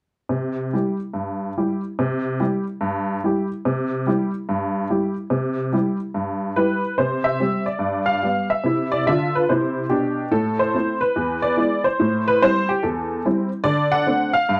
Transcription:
0.29 0.66 C3 medium
0.73 0.96 G3 soft
0.73 0.96 E4 soft
0.73 0.97 G4 soft
1.14 1.50 G2 soft
1.57 1.80 G3 soft
1.57 1.80 E4 soft
1.57 1.80 G4 soft
1.99 2.34 C3 medium
2.40 2.63 G3 soft
2.40 2.63 E4 soft
2.40 2.63 G4 soft
2.81 3.17 G2 medium
3.24 3.47 G3 soft
3.24 3.47 E4 soft
3.24 3.48 G4 soft
3.65 4.01 C3 medium
4.07 4.30 G3 soft
4.07 4.31 E4 soft
4.07 4.30 G4 soft
4.49 4.84 G2 medium
4.90 5.13 G3 soft
4.90 5.13 E4 soft
4.90 5.13 G4 soft
5.30 5.66 C3 medium
5.72 5.96 G3 soft
5.72 5.96 E4 soft
5.72 5.96 G4 soft
6.14 6.50 G2 medium
6.56 6.79 G3 soft
6.56 6.80 E4 soft
6.56 6.80 G4 soft
6.56 6.98 B4 medium
6.98 7.34 C3 medium
6.98 7.26 C5 medium
7.24 7.67 E5 medium
7.40 7.63 G3 soft
7.40 7.63 C4 soft
7.40 7.64 G4 soft
7.66 8.09 D5 medium
7.79 8.16 G2 medium
8.06 8.49 F5 medium
8.23 8.46 G3 soft
8.23 8.46 B3 soft
8.23 8.46 G4 soft
8.50 8.92 E5 medium
8.64 8.98 C3 soft
8.64 8.99 E4 soft
8.92 9.07 D5 medium
9.07 9.40 D3 medium
9.07 9.42 F4 medium
9.07 9.35 E5 medium
9.35 9.49 B4 medium
9.49 9.83 C3 medium
9.49 9.84 E4 medium
9.49 9.91 C5 medium
9.89 10.23 B2 medium
9.89 10.24 D4 medium
9.89 10.32 G4 medium
10.31 10.67 A2 medium
10.31 10.59 A4 medium
10.59 11.01 C5 medium
10.74 10.98 A3 soft
10.74 10.97 C4 soft
10.74 10.98 E4 soft
11.01 11.43 B4 medium
11.16 11.51 E2 medium
11.42 11.85 D5 medium
11.57 11.80 G#3 soft
11.57 11.80 B3 soft
11.57 11.80 E4 soft
11.84 12.26 C5 medium
12.00 12.35 A2 medium
12.28 12.42 B4 medium
12.42 12.65 G3 soft
12.42 12.65 C4 soft
12.42 12.66 E4 soft
12.42 12.69 C5 medium
12.69 12.83 G4 medium
12.83 13.19 E2 medium
12.83 13.25 A4 medium
13.25 13.48 G3 soft
13.25 13.48 C4 soft
13.25 13.48 E4 soft
13.64 14.00 D3 medium
13.64 13.92 D5 medium
13.92 14.34 F#5 medium
14.07 14.30 A3 soft
14.07 14.30 C4 soft
14.07 14.30 D4 soft
14.33 14.60 F5 medium
14.49 14.60 G2 medium

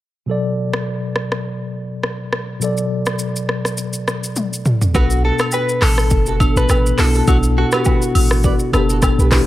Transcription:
0.26 2.56 B2 medium
0.26 2.57 F#3 medium
0.26 2.58 A4 medium
0.31 2.59 D5 medium
0.74 cross-stick loud
1.16 cross-stick medium
1.32 cross-stick medium
2.03 cross-stick medium
2.33 cross-stick medium
2.59 4.89 B2 medium
2.59 4.90 F#3 medium
2.59 4.91 A4 medium
2.59 shaker medium
2.64 4.92 D5 medium
2.77 shaker medium
3.06 cross-stick loud
3.06 shaker soft
3.19 shaker medium
3.36 shaker medium
3.49 cross-stick medium
3.65 cross-stick medium
3.65 shaker soft
3.78 shaker medium
3.93 shaker medium
4.08 cross-stick medium
4.08 shaker soft
4.24 shaker medium
4.36 high tom medium
4.36 shaker medium
4.53 shaker medium
4.65 mid tom medium
4.65 shaker soft
4.82 floor tom medium
4.82 shaker medium
4.94 5.31 B1 loud
4.94 6.03 B2 medium
4.94 6.04 B3 medium
4.94 6.04 D4 medium
4.94 5.04 F#4 medium
4.94 6.04 A4 medium
4.94 5.03 B4 loud
4.94 kick loud
4.94 high agogo medium
4.94 shaker medium
5.10 shaker medium
5.24 5.33 F#4 medium
5.24 5.33 A4 medium
5.39 cross-stick loud
5.39 high agogo medium
5.39 shaker medium
5.52 5.69 F#4 medium
5.52 5.69 B4 medium
5.52 low woodblock medium
5.52 shaker medium
5.69 shaker medium
5.82 6.13 A1 loud
5.82 6.57 A4 loud
5.82 cross-stick medium
5.82 clap loud
5.82 open hi-hat medium
5.82 high agogo medium
5.98 cross-stick loud
5.98 shaker medium
6.10 6.47 F#1 loud
6.10 kick medium
6.10 shaker medium
6.26 6.35 F#4 medium
6.26 6.34 A4 medium
6.26 shaker medium
6.39 6.94 B2 medium
6.39 6.95 B3 medium
6.39 6.95 D4 medium
6.39 6.96 A4 medium
6.39 kick medium
6.39 high agogo medium
6.39 shaker medium
6.56 6.67 A1 medium
6.56 6.64 F#4 medium
6.56 6.64 A4 medium
6.56 6.99 B4 loud
6.56 shaker medium
6.69 6.93 A1 medium
6.69 6.79 F#4 medium
6.69 6.78 B4 medium
6.69 cross-stick medium
6.69 high agogo medium
6.69 low woodblock medium
6.69 shaker medium
6.86 shaker medium
6.98 7.22 B1 medium
6.98 7.25 B2 medium
6.98 7.26 B3 medium
6.98 7.26 D4 medium
6.98 7.27 E4 medium
6.98 7.08 F#4 medium
6.98 7.07 A4 medium
6.98 cross-stick loud
6.98 clap loud
6.98 open hi-hat medium
6.98 shaker medium
7.15 7.23 F#4 medium
7.15 7.22 A4 medium
7.15 shaker medium
7.27 7.64 B1 loud
7.27 8.36 B2 medium
7.27 8.37 B3 medium
7.27 8.37 D4 medium
7.27 7.36 F#4 loud
7.27 8.37 A4 medium
7.27 kick loud
7.27 high agogo medium
7.27 shaker medium
7.43 shaker medium
7.58 7.66 F#4 medium
7.58 7.66 A4 medium
7.72 7.81 G4 medium
7.72 7.80 B4 medium
7.72 cross-stick loud
7.72 high agogo medium
7.72 shaker medium
7.85 8.02 F#4 medium
7.85 8.02 B4 medium
7.85 kick medium
7.85 low woodblock medium
7.85 shaker medium
8.02 shaker medium
8.15 8.51 A1 loud
8.15 open hi-hat medium
8.15 high agogo medium
8.31 cross-stick loud
8.31 shaker medium
8.44 8.54 B4 medium
8.44 8.53 D5 medium
8.44 kick medium
8.44 shaker medium
8.59 shaker medium
8.72 9.10 F#1 medium
8.72 9.27 B2 medium
8.72 9.28 B3 medium
8.72 9.28 D4 medium
8.72 8.83 G4 medium
8.72 9.29 A4 loud
8.72 8.82 B4 medium
8.72 cross-stick medium
8.72 high agogo medium
8.72 shaker medium
8.90 8.97 F#4 medium
8.90 8.97 A4 medium
8.90 shaker medium
9.02 kick medium
9.02 cross-stick loud
9.02 high agogo medium
9.02 low woodblock medium
9.02 shaker medium
9.18 9.42 B1 loud
9.18 9.27 G4 medium
9.18 9.26 B4 medium
9.18 shaker medium
9.30 9.47 B2 medium
9.30 9.47 B3 medium
9.30 9.47 D4 medium
9.30 9.47 E4 medium
9.30 9.41 G4 medium
9.30 9.41 B4 medium
9.30 kick loud
9.30 cross-stick loud
9.30 clap loud
9.30 open hi-hat medium
9.30 shaker medium

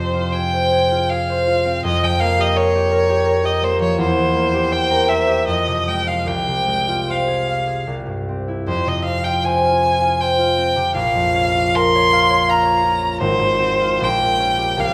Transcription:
0.00 1.83 F2 soft
0.00 1.88 C3 soft
0.00 1.64 C4 soft
0.00 0.34 C5 medium
0.14 0.90 F4 soft
0.33 0.71 G#4 soft
0.33 1.11 G5 medium
0.54 1.29 C5 soft
0.72 1.10 G#4 soft
0.92 1.46 F4 soft
1.09 1.88 G#4 soft
1.09 1.84 F5 medium
1.30 1.88 C5 soft
1.48 4.03 F4 soft
1.65 1.87 C4 soft
1.84 4.02 F2 medium
1.84 2.05 D#5 medium
2.02 3.79 F3 soft
2.02 2.21 G5 medium
2.20 3.61 A#3 soft
2.20 2.42 F5 medium
2.38 2.74 G4 soft
2.38 2.58 D#5 medium
2.56 2.91 A#4 soft
2.56 3.47 C#5 medium
2.75 3.08 G4 soft
2.92 3.24 A#4 soft
3.09 3.43 G4 soft
3.26 4.89 A#4 soft
3.44 4.52 G4 soft
3.44 3.66 D#5 medium
3.62 4.34 A#3 soft
3.62 3.81 C5 medium
3.80 4.02 F3 soft
3.80 3.99 C#5 medium
3.98 5.51 E2 medium
3.98 4.74 C5 medium
4.17 5.51 E3 soft
4.35 5.51 A#3 soft
4.53 5.26 G4 soft
4.71 5.08 C5 soft
4.71 5.10 G5 medium
4.90 5.51 A#4 soft
5.08 7.07 C5 soft
5.08 5.47 E5 medium
5.27 5.50 G4 soft
5.47 6.30 F2 soft
5.47 5.90 D#5 medium
5.67 6.30 C3 soft
5.88 6.66 G#3 soft
5.88 6.09 G5 medium
6.07 6.87 F4 soft
6.07 6.29 F5 medium
6.26 7.86 C2 soft
6.26 7.12 G5 medium
6.47 7.91 C3 soft
6.67 7.91 G#3 soft
6.88 7.92 F4 soft
7.08 9.43 C5 soft
7.08 7.89 F5 medium
7.28 7.66 G#4 soft
7.48 7.91 F5 soft
7.67 7.91 G#4 soft
7.87 8.70 C2 soft
8.07 8.70 G2 soft
8.29 9.06 C4 soft
8.48 8.71 E4 soft
8.67 10.97 F2 medium
8.67 8.89 C5 medium
8.86 10.74 C3 soft
8.86 9.04 D#5 medium
9.05 10.56 C4 soft
9.05 9.25 F5 medium
9.24 9.64 F4 soft
9.24 9.46 G5 medium
9.45 9.83 C5 soft
9.45 10.22 G#5 medium
9.65 10.00 F4 soft
9.84 10.19 C5 soft
10.02 10.38 F4 soft
10.20 10.98 C5 soft
10.20 10.95 G5 medium
10.39 11.54 F4 soft
10.57 10.98 C4 soft
10.76 10.98 C3 soft
10.94 13.22 A#1 medium
10.94 11.76 F5 medium
11.15 13.22 F2 soft
11.35 13.01 C#4 soft
11.55 12.83 F4 soft
11.75 13.23 A#4 soft
11.75 12.51 C6 medium
11.95 12.29 C#5 medium
12.13 12.47 F5 medium
12.30 12.64 C#5 soft
12.49 14.03 F5 medium
12.49 13.20 A#5 medium
12.65 13.22 C#5 soft
12.84 13.79 F4 soft
13.03 13.23 C#4 soft
13.21 14.03 G#1 medium
13.21 14.05 C5 medium
13.39 14.03 G#2 soft
13.59 14.03 C4 soft
13.80 14.03 F4 soft
14.01 14.80 A#1 medium
14.01 14.81 G5 medium
14.20 14.80 A#2 soft
14.39 14.80 C#4 soft
14.58 14.94 G4 soft
14.77 14.94 C2 medium
14.77 14.94 F5 medium

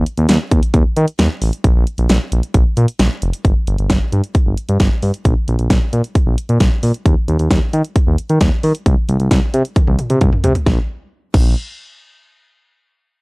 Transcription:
0.06 closed hi-hat medium
0.17 0.27 D#2 loud
0.17 closed hi-hat medium
0.29 0.38 D#2 loud
0.29 snare loud
0.29 closed hi-hat medium
0.51 0.61 D#2 loud
0.51 kick loud
0.51 closed hi-hat medium
0.63 closed hi-hat medium
0.74 0.83 D#2 loud
0.74 kick loud
0.74 closed hi-hat medium
0.96 1.06 D#3 loud
0.96 closed hi-hat medium
1.08 closed hi-hat medium
1.19 1.28 D#2 loud
1.19 snare loud
1.19 closed hi-hat medium
1.42 1.51 A1 medium
1.42 open hi-hat medium
1.53 closed hi-hat medium
1.64 1.73 A#1 loud
1.64 kick loud
1.64 closed hi-hat medium
1.75 1.85 A#1 loud
1.87 closed hi-hat medium
1.98 2.07 A#1 loud
1.98 closed hi-hat medium
2.09 2.19 A#1 loud
2.09 snare loud
2.09 closed hi-hat medium
2.32 2.41 A#1 loud
2.32 closed hi-hat medium
2.43 closed hi-hat medium
2.54 2.64 A#1 loud
2.54 kick loud
2.54 closed hi-hat medium
2.77 2.86 A#2 loud
2.77 closed hi-hat medium
2.88 closed hi-hat medium
2.99 3.09 A#1 loud
2.99 snare loud
2.99 closed hi-hat medium
3.22 3.31 F1 loud
3.22 closed hi-hat medium
3.33 closed hi-hat medium
3.45 3.54 G1 loud
3.45 kick loud
3.45 closed hi-hat medium
3.67 3.76 G1 loud
3.67 closed hi-hat medium
3.78 3.88 G1 loud
3.78 closed hi-hat medium
3.90 3.99 G1 loud
3.90 kick loud
3.90 snare loud
3.90 closed hi-hat medium
4.12 4.22 G2 loud
4.12 closed hi-hat medium
4.24 closed hi-hat medium
4.35 kick loud
4.35 closed hi-hat medium
4.46 4.55 G1 medium
4.57 closed hi-hat medium
4.69 4.78 G2 loud
4.69 closed hi-hat medium
4.80 4.89 G1 loud
4.80 kick loud
4.80 snare loud
4.80 closed hi-hat medium
5.03 5.12 G2 medium
5.03 open hi-hat medium
5.14 closed hi-hat medium
5.25 5.34 A#1 loud
5.25 kick loud
5.25 closed hi-hat medium
5.48 5.57 A#1 loud
5.48 closed hi-hat medium
5.59 5.68 A#1 medium
5.59 closed hi-hat medium
5.70 5.79 A#1 loud
5.70 kick loud
5.70 snare loud
5.70 closed hi-hat medium
5.93 6.02 A#2 loud
5.93 closed hi-hat medium
6.04 closed hi-hat medium
6.15 kick loud
6.15 closed hi-hat medium
6.27 6.36 A#1 loud
6.38 closed hi-hat medium
6.49 6.58 A#2 loud
6.49 closed hi-hat medium
6.60 6.70 A#1 medium
6.60 kick loud
6.60 snare loud
6.60 closed hi-hat medium
6.83 6.92 A#2 loud
6.83 open hi-hat medium
6.94 closed hi-hat medium
7.06 7.15 D#2 loud
7.06 kick loud
7.06 closed hi-hat medium
7.28 7.37 D#2 loud
7.28 closed hi-hat medium
7.39 7.49 D#2 loud
7.39 closed hi-hat medium
7.51 7.60 D#2 loud
7.51 kick loud
7.51 snare loud
7.51 closed hi-hat medium
7.73 7.82 D#3 loud
7.73 closed hi-hat medium
7.85 closed hi-hat medium
7.96 kick loud
7.96 closed hi-hat medium
8.07 8.16 D#2 loud
8.18 closed hi-hat medium
8.29 8.39 D#3 medium
8.29 closed hi-hat medium
8.41 8.50 D#2 loud
8.41 kick loud
8.41 snare loud
8.41 closed hi-hat medium
8.63 8.73 D#3 loud
8.63 open hi-hat medium
8.75 closed hi-hat medium
8.86 8.95 C2 loud
8.86 kick loud
8.86 closed hi-hat medium
9.08 9.18 C2 loud
9.08 closed hi-hat medium
9.20 9.29 C2 medium
9.20 closed hi-hat medium
9.31 9.40 C2 loud
9.31 kick loud
9.31 snare loud
9.31 closed hi-hat medium
9.54 9.63 C3 loud
9.54 closed hi-hat medium
9.65 closed hi-hat medium
9.76 kick loud
9.76 closed hi-hat medium
9.76 high tom medium
9.88 9.97 C2 loud
9.88 high tom medium
9.99 closed hi-hat medium
9.99 mid tom medium
10.10 10.19 C3 loud
10.10 closed hi-hat medium
10.10 mid tom medium
10.21 10.31 C2 loud
10.21 kick loud
10.21 closed hi-hat medium
10.21 mid tom medium
10.33 mid tom medium
10.44 10.53 C3 loud
10.44 closed hi-hat medium
10.44 floor tom loud
10.55 closed hi-hat medium
10.55 floor tom medium
10.66 10.79 A#1 loud
10.66 kick loud
10.66 snare medium
11.34 11.55 A#1 loud
11.34 kick loud
11.34 crash medium

